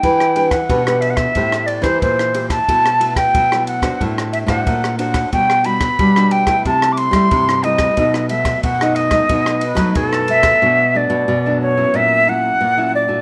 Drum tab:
RD |x-xxx-xxx-xxx-xx|x-xxx-xxx-xxx-xx|x-xxx-xxx-xxx-xx|x-xxx-xxx-xxx-xx|
SD |-r-r-r-r-r-r-r-r|-r-r-r-r-r-r-r-r|-r-r-r-r-r-r-r-r|-r-r-r-r-r-r-r-r|
BD |o--oo--oo--oo--o|o--oo--oo--oo--o|o--oo--oo--oo--o|o--oo--oo--oo--o|

RD |----------------|
SD |----------------|
BD |----------------|